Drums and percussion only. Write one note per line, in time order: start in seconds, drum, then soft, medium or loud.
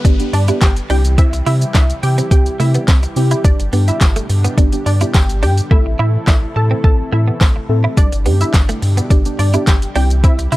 0.05 kick loud
0.05 closed hi-hat medium
0.05 shaker medium
0.20 closed hi-hat medium
0.20 shaker medium
0.34 open hi-hat medium
0.34 shaker medium
0.48 closed hi-hat medium
0.48 shaker medium
0.61 kick loud
0.61 snare medium
0.61 clap loud
0.61 closed hi-hat medium
0.61 tambourine medium
0.61 shaker medium
0.77 closed hi-hat medium
0.77 shaker medium
0.90 open hi-hat medium
0.90 shaker medium
1.05 closed hi-hat medium
1.05 shaker medium
1.18 kick loud
1.18 closed hi-hat medium
1.18 shaker medium
1.33 closed hi-hat medium
1.33 shaker medium
1.46 open hi-hat medium
1.46 shaker medium
1.62 closed hi-hat medium
1.62 shaker medium
1.75 kick loud
1.75 snare medium
1.75 clap loud
1.75 closed hi-hat medium
1.75 tambourine loud
1.75 shaker medium
1.90 closed hi-hat medium
1.90 shaker medium
2.03 open hi-hat medium
2.03 shaker medium
2.18 closed hi-hat medium
2.18 shaker medium
2.31 kick loud
2.31 closed hi-hat medium
2.31 shaker medium
2.46 closed hi-hat medium
2.46 shaker medium
2.60 open hi-hat medium
2.60 shaker medium
2.74 closed hi-hat medium
2.74 shaker medium
2.88 kick loud
2.88 snare medium
2.88 clap loud
2.88 closed hi-hat medium
2.88 tambourine medium
2.88 shaker medium
3.03 closed hi-hat medium
3.03 shaker medium
3.16 open hi-hat medium
3.16 shaker medium
3.31 closed hi-hat medium
3.31 shaker medium
3.45 kick loud
3.45 closed hi-hat medium
3.45 shaker medium
3.60 closed hi-hat medium
3.60 shaker medium
3.73 open hi-hat medium
3.73 shaker medium
3.88 closed hi-hat medium
3.88 shaker medium
4.01 kick loud
4.01 snare loud
4.01 clap loud
4.01 closed hi-hat medium
4.01 tambourine loud
4.01 shaker medium
4.16 closed hi-hat medium
4.16 shaker medium
4.30 open hi-hat medium
4.30 shaker medium
4.45 closed hi-hat medium
4.45 shaker medium
4.58 kick loud
4.58 closed hi-hat medium
4.58 shaker medium
4.73 closed hi-hat medium
4.73 shaker medium
4.86 open hi-hat medium
4.86 shaker medium
5.01 closed hi-hat medium
5.01 shaker medium
5.14 kick loud
5.14 snare medium
5.14 clap loud
5.14 closed hi-hat medium
5.14 tambourine medium
5.14 shaker medium
5.29 closed hi-hat medium
5.29 shaker medium
5.43 open hi-hat medium
5.43 shaker medium
5.58 closed hi-hat medium
5.58 shaker medium
5.71 kick loud
6.27 kick loud
6.27 snare loud
6.27 clap loud
6.27 tambourine loud
6.84 kick loud
7.41 kick loud
7.41 snare medium
7.41 clap loud
7.41 tambourine medium
7.97 kick loud
7.97 closed hi-hat medium
7.97 shaker medium
8.12 closed hi-hat medium
8.12 shaker medium
8.26 open hi-hat medium
8.26 shaker medium
8.41 closed hi-hat medium
8.41 shaker medium
8.54 kick loud
8.54 snare medium
8.54 clap loud
8.54 closed hi-hat medium
8.54 tambourine loud
8.54 shaker medium
8.69 closed hi-hat medium
8.69 shaker medium
8.82 open hi-hat medium
8.82 shaker medium
8.97 closed hi-hat medium
8.97 shaker medium
9.10 kick loud
9.10 closed hi-hat medium
9.10 shaker medium
9.25 closed hi-hat medium
9.25 shaker medium
9.39 open hi-hat medium
9.39 shaker medium
9.54 closed hi-hat medium
9.54 shaker medium
9.67 kick loud
9.67 snare medium
9.67 clap loud
9.67 closed hi-hat medium
9.67 tambourine medium
9.67 shaker medium
9.82 closed hi-hat medium
9.82 shaker medium
9.96 open hi-hat medium
9.96 shaker medium
10.10 closed hi-hat medium
10.10 shaker medium
10.24 kick loud
10.24 closed hi-hat medium
10.24 shaker medium
10.39 closed hi-hat medium
10.39 shaker medium
10.52 open hi-hat medium
10.52 shaker medium